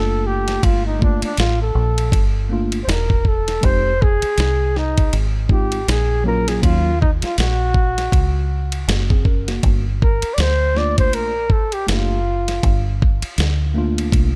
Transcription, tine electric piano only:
0.00 0.94 A3 medium
0.00 0.94 A#3 medium
0.00 0.95 D4 medium
0.00 0.96 F4 medium
0.99 1.28 A3 medium
0.99 1.29 A#3 medium
0.99 1.29 D4 medium
0.99 1.30 F4 medium
2.49 2.78 A3 medium
2.49 2.79 A#3 medium
2.49 2.79 D4 medium
2.49 2.80 F4 medium
3.61 3.90 G#3 medium
3.61 3.91 C4 medium
3.61 3.91 D#4 medium
3.61 3.92 G4 medium
5.49 5.78 G#3 medium
5.49 5.78 C4 medium
5.49 5.79 D#4 medium
5.49 5.80 F4 medium
6.24 6.60 F#3 medium
6.24 6.61 A#3 medium
6.24 6.63 C#4 medium
6.24 6.64 F4 medium
6.62 6.91 F#3 medium
6.62 6.91 A#3 medium
6.62 6.92 C#4 medium
6.62 6.92 F4 medium
8.88 9.10 A#3 soft
8.88 9.09 F#4 medium
9.11 9.26 C4 medium
9.11 9.25 G#4 medium
9.26 9.47 C#4 medium
9.26 9.47 A#4 medium
9.48 9.84 A#3 medium
9.48 9.83 F#4 medium
10.75 11.30 A3 medium
10.75 11.31 A#3 medium
10.75 11.31 D4 medium
10.75 11.32 F4 medium
11.87 12.16 A3 medium
11.87 12.16 A#3 medium
11.87 12.17 D4 medium
11.87 12.18 G4 medium
13.74 14.30 A3 medium
13.74 14.31 A#3 medium
13.74 14.31 D4 medium
13.74 14.32 F4 medium

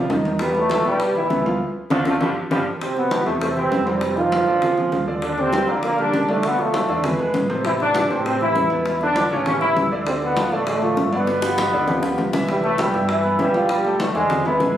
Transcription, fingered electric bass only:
0.09 0.79 E2 medium
0.85 1.27 B1 loud
1.30 1.59 D2 medium
1.91 2.02 D2 medium
2.06 2.17 D2 loud
2.21 2.32 G1 loud
2.51 2.62 G1 loud
3.27 3.69 E2 medium
3.72 4.42 F2 medium
4.47 4.89 A#1 medium
4.92 5.63 D#2 medium
5.68 6.11 A#1 loud
6.14 6.84 B1 medium
6.89 7.17 E2 loud
7.19 7.33 B1 medium
7.34 8.04 A1 medium
8.10 8.52 A2 medium
8.55 9.26 E2 medium
9.31 9.73 A1 loud
9.77 10.47 D2 medium
10.52 10.94 A1 loud
10.97 11.67 G1 medium
11.73 12.01 D2 medium
12.03 12.17 D2 medium
12.18 12.88 C2 medium
12.94 13.36 G2 loud
13.39 14.09 B1 medium
14.15 14.57 E2 medium
14.60 14.77 A1 medium

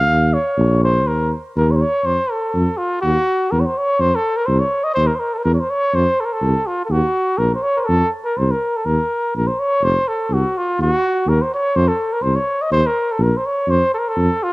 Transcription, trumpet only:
0.00 0.35 F5 loud
0.34 0.82 C#5 medium
0.84 1.09 C5 medium
1.07 1.31 A#4 medium
1.58 1.68 A#4 medium
1.71 1.77 C#5 medium
1.76 1.83 C5 medium
1.81 2.07 C#5 loud
2.05 2.32 C5 loud
2.31 2.79 A4 medium
2.77 3.01 F4 medium
3.01 3.53 F#4 loud
3.51 3.62 A#4 medium
3.60 3.67 C#5 soft
3.66 3.79 C5 medium
3.78 4.02 C#5 medium
4.01 4.17 C5 loud
4.16 4.38 A4 medium
4.37 4.48 A#4 medium
4.46 4.61 C5 medium
4.60 4.86 C#5 medium
4.84 4.94 D#5 loud
4.94 5.09 C5 loud
5.07 5.17 A#4 medium
5.16 5.35 A#4 medium
5.16 5.21 C5 medium
5.34 5.39 A4 medium
5.38 5.40 A#4 medium
5.44 5.54 A#4 medium
5.54 5.62 C#5 medium
5.60 5.72 C5 medium
5.70 5.97 C#5 loud
5.95 6.22 C5 loud
6.20 6.27 A4 medium
6.25 6.35 A#4 medium
6.33 6.68 A4 medium
6.67 6.84 F4 medium
6.85 6.93 A4 medium
6.92 7.40 F#4 loud
7.38 7.51 A#4 medium
7.55 7.64 C5 medium
7.62 7.78 C#5 loud
7.76 7.81 A#4 medium
7.76 7.83 C5 medium
7.82 8.10 A4 loud
7.82 7.86 A#4 medium
8.25 8.39 A#4 medium
8.38 8.53 C5 medium
8.51 8.78 A#4 medium
8.77 8.87 A4 medium
8.86 9.33 A#4 medium
9.36 9.49 A#4 medium
9.47 9.61 C5 medium
9.59 9.86 C#5 loud
9.84 10.09 C5 loud
10.08 10.35 A4 medium
10.33 10.59 F#4 medium
10.58 10.80 F4 medium
10.82 11.30 F#4 loud
11.29 11.43 A#4 medium
11.42 11.52 C5 medium
11.54 11.78 C#5 loud
11.76 11.90 C5 loud
11.88 12.15 A4 medium
12.13 12.24 A#4 medium
12.23 12.37 C5 medium
12.36 12.64 C#5 medium
12.62 12.72 D#5 medium
12.72 12.88 C5 loud
12.87 13.13 A#4 loud
13.12 13.24 A4 medium
13.23 13.38 A#4 medium
13.37 13.48 C5 medium
13.46 13.72 C#5 loud
13.70 13.93 C5 loud
13.94 14.00 A4 medium
13.99 14.10 A#4 medium
14.08 14.45 A4 medium
14.43 14.53 F4 loud

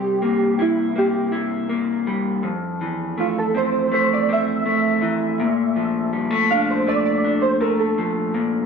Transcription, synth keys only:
0.00 0.62 G4 loud
0.62 0.99 E4 medium
0.98 1.32 G4 medium
3.20 3.38 F4 medium
3.39 3.57 A4 medium
3.57 3.93 C5 medium
3.94 4.12 C5 loud
4.13 4.29 D5 medium
4.33 6.12 E5 medium
6.51 6.70 F5 medium
6.71 6.89 C5 medium
6.88 7.04 D5 loud
7.05 7.44 D5 medium
7.42 7.62 C5 medium
7.61 7.81 A#4 medium
7.80 8.14 A4 medium

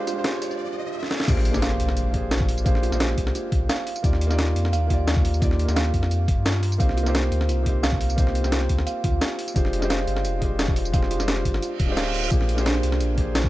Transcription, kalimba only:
0.07 0.23 F4 loud
0.25 0.40 G4 medium
1.28 1.44 F4 medium
1.62 1.72 F5 loud
2.31 2.41 F4 medium
2.66 2.81 F5 medium
2.83 2.99 F4 loud
3.00 3.16 G4 medium
3.35 3.51 F4 medium
3.70 3.79 F5 loud
4.38 4.48 F4 medium
4.73 4.88 F5 medium
4.90 5.06 F4 loud
5.07 5.23 G4 medium
5.42 5.58 F4 medium
5.76 5.86 F5 loud
6.45 6.55 F4 medium
6.80 6.95 F5 medium
6.97 7.13 F4 loud
7.14 7.30 G4 medium
7.49 7.65 F4 medium
7.83 7.93 F5 loud
8.52 8.62 F4 medium
8.87 9.02 F5 medium
9.04 9.20 F4 loud
9.21 9.37 G4 medium
9.56 9.72 F4 medium
9.90 10.00 F5 loud
10.59 10.69 F4 medium
10.94 11.09 F5 medium
11.11 11.26 F4 loud
11.28 11.44 G4 medium
11.62 11.79 F4 medium
11.97 12.07 F5 loud
12.31 12.48 F4 medium
12.66 12.82 D4 loud
13.35 13.45 F4 medium

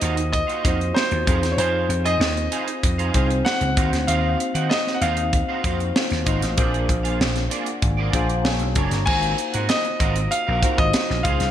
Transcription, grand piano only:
0.00 0.28 D#5 medium
0.32 0.97 D#5 medium
0.94 1.52 C5 medium
1.52 1.59 C#5 medium
1.58 2.02 C5 medium
2.05 3.26 D#5 medium
3.45 4.10 F#5 medium
4.07 4.72 F5 medium
4.70 4.95 D#5 medium
4.94 5.02 F#5 medium
5.01 8.41 F5 medium
9.06 9.71 G#5 loud
9.69 10.28 D#5 medium
10.31 10.80 F5 medium
10.78 11.26 D#5 medium
11.23 11.51 F5 medium

